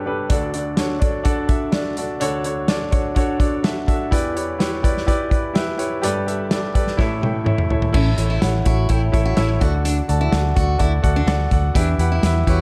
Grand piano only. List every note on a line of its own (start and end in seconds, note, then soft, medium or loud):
0.00 0.27 G1 medium
0.00 0.27 G2 medium
0.00 0.06 D4 medium
0.00 0.06 G4 medium
0.00 0.07 A4 medium
0.00 0.07 B4 medium
0.00 0.32 C#5 medium
0.00 0.31 D5 medium
0.06 0.24 D4 medium
0.06 0.25 G4 medium
0.06 0.25 A4 medium
0.06 0.25 B4 medium
0.30 2.17 D2 medium
0.30 2.17 D3 medium
0.30 0.48 D4 medium
0.30 0.49 F#4 medium
0.30 0.49 A4 medium
0.30 0.49 D5 medium
0.53 0.72 D4 medium
0.53 0.72 F#4 medium
0.53 0.72 A4 medium
0.53 0.73 D5 medium
0.76 0.96 D4 medium
0.76 0.96 F#4 medium
0.76 0.96 A4 medium
0.76 0.97 C#5 medium
0.99 1.19 D4 medium
0.99 1.20 F#4 medium
0.99 1.20 A4 medium
0.99 1.20 D5 medium
1.24 1.43 D4 medium
1.24 1.43 F#4 medium
1.24 1.43 A4 medium
1.24 1.44 D5 medium
1.47 1.67 D4 medium
1.47 1.67 F#4 medium
1.47 1.68 A4 medium
1.47 1.68 E5 medium
1.72 1.91 D4 medium
1.72 1.91 F#4 medium
1.72 1.92 A4 medium
1.72 1.92 D5 medium
1.97 2.16 D4 medium
1.97 2.16 F#4 medium
1.97 2.16 A4 medium
1.97 2.16 D5 medium
2.20 4.08 D2 medium
2.20 4.08 D3 medium
2.20 2.39 D4 medium
2.20 2.39 F#4 medium
2.20 2.40 A4 medium
2.20 2.40 C#5 loud
2.44 2.63 D4 medium
2.44 2.63 F#4 medium
2.44 2.64 A4 medium
2.44 2.64 C#5 medium
2.68 2.87 D4 medium
2.68 2.87 F#4 medium
2.68 2.87 A4 medium
2.68 2.87 D5 medium
2.91 3.10 D4 medium
2.91 3.10 F#4 medium
2.91 3.11 A4 medium
2.91 3.11 C#5 medium
3.15 3.34 D4 medium
3.15 3.35 F#4 medium
3.15 3.35 A4 medium
3.15 3.35 C#5 medium
3.39 3.58 D4 medium
3.39 3.58 F#4 medium
3.39 3.58 A4 medium
3.39 3.59 D5 medium
3.63 3.82 D4 medium
3.63 3.82 F#4 medium
3.63 3.82 A4 medium
3.63 3.83 E5 medium
3.87 4.06 D4 medium
3.87 4.06 F#4 medium
3.87 4.06 A4 medium
3.87 4.07 E5 medium
4.11 5.99 E2 medium
4.11 5.99 E3 medium
4.11 4.30 E4 medium
4.11 4.30 G4 medium
4.11 4.31 B4 medium
4.11 4.31 D5 medium
4.35 4.54 E4 medium
4.35 4.54 G4 medium
4.35 4.54 B4 medium
4.35 4.55 C#5 medium
4.58 4.77 E4 medium
4.58 4.78 G4 medium
4.58 4.78 B4 medium
4.58 4.78 C#5 medium
4.83 5.02 E4 medium
4.83 5.02 G4 medium
4.83 5.02 B4 medium
4.83 5.02 D5 medium
5.07 5.25 E4 medium
5.07 5.26 G4 medium
5.07 5.26 B4 medium
5.07 5.26 D5 loud
5.30 5.49 E4 medium
5.30 5.49 G4 medium
5.30 5.50 B4 medium
5.30 5.50 D5 medium
5.54 5.73 E4 medium
5.54 5.73 G4 medium
5.54 5.73 B4 medium
5.54 5.74 E5 medium
5.78 5.97 E4 medium
5.78 5.97 G4 medium
5.78 5.97 B4 medium
5.78 5.97 C#5 medium
6.02 6.94 G1 medium
6.02 6.94 G2 medium
6.02 6.21 G4 medium
6.02 6.21 A4 medium
6.02 6.21 B4 medium
6.02 6.22 D5 loud
6.26 6.45 G4 medium
6.26 6.45 A4 medium
6.26 6.45 B4 medium
6.26 6.46 E5 medium
6.50 6.69 G4 medium
6.50 6.69 A4 medium
6.50 6.69 B4 medium
6.50 6.70 D5 medium
6.74 6.93 G4 medium
6.74 6.93 A4 medium
6.74 6.93 B4 medium
6.74 6.94 D5 medium
6.97 7.90 A1 medium
6.97 7.90 A2 medium
6.97 7.16 E4 medium
6.97 7.17 A4 medium
6.97 7.17 C#5 medium
6.97 7.17 E5 loud
7.21 7.40 E4 medium
7.21 7.40 A4 medium
7.21 7.41 C#5 medium
7.21 7.41 G5 medium
7.44 7.64 E4 medium
7.44 7.64 A4 medium
7.44 7.64 C#5 medium
7.44 7.65 E5 medium
7.70 7.88 E4 medium
7.70 7.89 A4 medium
7.70 7.89 C#5 medium
7.70 7.89 E5 medium
7.93 8.61 A2 medium
7.93 8.12 E4 medium
7.93 8.12 A4 medium
7.93 8.12 C#5 medium
7.93 8.12 E5 medium
8.17 8.36 E4 medium
8.17 8.36 A4 medium
8.17 8.36 C#5 medium
8.17 8.36 E5 medium
8.41 8.60 E4 medium
8.41 8.60 A4 medium
8.41 8.60 C#5 medium
8.41 8.60 F#5 medium
8.65 8.84 E4 medium
8.65 8.84 A4 medium
8.65 8.84 C#5 medium
8.65 8.84 E5 medium
8.89 9.07 E4 medium
8.89 9.08 A4 medium
8.89 9.08 C#5 medium
8.89 9.08 G5 medium
9.12 9.31 E4 medium
9.12 9.31 A4 medium
9.12 9.31 C#5 medium
9.12 9.32 E5 medium
9.36 9.55 E4 medium
9.36 9.55 A4 medium
9.36 9.55 C#5 medium
9.36 9.56 E5 loud
9.60 10.28 D3 medium
9.60 9.99 F#4 medium
9.60 9.99 A4 medium
9.60 9.99 D5 medium
9.60 10.00 F#5 medium
10.08 10.27 F#4 medium
10.08 10.27 A4 medium
10.08 10.27 D5 medium
10.08 10.27 A5 medium
10.31 10.50 F#4 medium
10.31 10.50 A4 medium
10.31 10.50 D5 medium
10.31 10.51 F#5 medium
10.55 10.74 F#4 medium
10.55 10.74 A4 medium
10.55 10.75 D5 medium
10.55 10.75 F#5 medium
10.78 10.98 F#4 medium
10.78 10.98 A4 medium
10.78 10.98 D5 medium
10.78 10.98 A5 medium
11.02 11.21 F#4 medium
11.02 11.22 A4 medium
11.02 11.22 D5 medium
11.02 11.22 F#5 loud
11.27 11.46 F#4 loud
11.27 11.46 A4 medium
11.27 11.46 D5 loud
11.27 11.46 F#5 loud
11.51 11.70 F#4 medium
11.51 11.70 A4 medium
11.51 11.70 D5 medium
11.51 11.71 F#5 medium
11.74 12.43 E3 medium
11.74 11.93 E4 medium
11.74 11.94 G4 medium
11.74 11.94 B4 medium
11.74 11.94 E5 medium
11.99 12.18 E4 medium
11.99 12.18 G4 medium
11.99 12.18 B4 medium
11.99 12.18 F#5 medium
12.23 12.41 E4 medium
12.23 12.41 G4 medium
12.23 12.42 B4 medium
12.23 12.42 E5 medium
12.47 12.61 E4 medium
12.47 12.61 G4 medium
12.47 12.61 B4 medium
12.47 12.61 C#5 medium